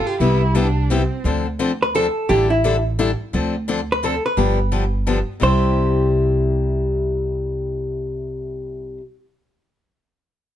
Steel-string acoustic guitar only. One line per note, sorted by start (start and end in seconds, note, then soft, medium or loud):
0.20 0.41 C3 medium
0.20 0.41 G3 medium
0.20 0.41 B3 medium
0.20 0.41 E4 medium
0.20 0.41 G4 medium
0.55 0.66 C3 medium
0.55 0.66 G3 medium
0.55 0.66 B3 medium
0.55 0.66 E4 medium
0.55 0.67 G4 medium
0.90 1.01 C3 medium
0.90 1.01 G3 medium
0.90 1.01 B3 medium
0.90 1.02 E4 medium
0.90 1.02 G4 medium
1.25 1.46 D3 medium
1.25 1.46 F3 medium
1.25 1.46 C4 medium
1.25 1.46 D4 medium
1.25 1.46 A4 medium
1.59 1.70 D3 medium
1.59 1.71 F3 medium
1.59 1.71 C4 medium
1.59 1.71 D4 medium
1.59 1.71 A4 medium
1.95 2.05 D3 medium
1.95 2.06 F3 medium
1.95 2.06 C4 medium
1.95 2.06 D4 medium
1.95 2.06 A4 medium
2.29 2.50 D3 medium
2.29 2.50 G3 medium
2.29 2.50 D4 medium
2.29 2.50 E4 medium
2.29 2.50 A4 medium
2.64 2.75 D3 medium
2.64 2.75 G3 medium
2.64 2.75 D4 medium
2.64 2.75 E4 medium
2.64 2.76 A4 medium
2.99 3.10 D3 medium
2.99 3.10 G3 medium
2.99 3.10 D4 medium
2.99 3.10 E4 medium
2.99 3.10 A4 medium
3.33 3.54 D3 medium
3.33 3.54 F3 medium
3.33 3.54 C4 medium
3.33 3.55 D4 medium
3.33 3.55 A4 medium
3.68 3.79 D3 medium
3.68 3.79 F3 medium
3.68 3.79 C4 medium
3.68 3.79 D4 medium
3.68 3.80 A4 medium
4.03 4.14 D3 medium
4.03 4.14 F3 medium
4.03 4.14 C4 medium
4.03 4.14 D4 medium
4.03 4.15 A4 medium
4.37 4.58 D3 medium
4.37 4.58 F3 medium
4.37 4.58 B3 medium
4.37 4.58 D4 medium
4.37 4.58 G4 medium
4.72 4.83 D3 medium
4.72 4.83 F3 medium
4.72 4.83 B3 medium
4.72 4.83 D4 medium
4.72 4.84 G4 medium
5.07 5.18 D3 medium
5.07 5.18 F3 medium
5.07 5.18 B3 medium
5.07 5.18 D4 medium
5.07 5.18 G4 medium
5.40 9.00 C3 medium
5.40 9.00 G3 medium
5.40 9.01 E4 medium
5.40 9.01 G4 medium